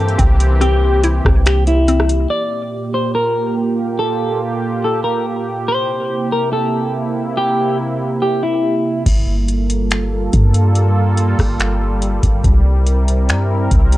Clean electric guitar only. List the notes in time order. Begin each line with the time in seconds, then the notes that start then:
Already playing: A4
0.61 G4
1.46 G4
1.67 E4
2.30 D5
2.94 C5
3.15 A#4
3.99 A4
4.84 A4
5.04 A#4
5.68 C5
6.32 A#4
6.53 A4
7.37 G4
8.22 G4
8.43 E4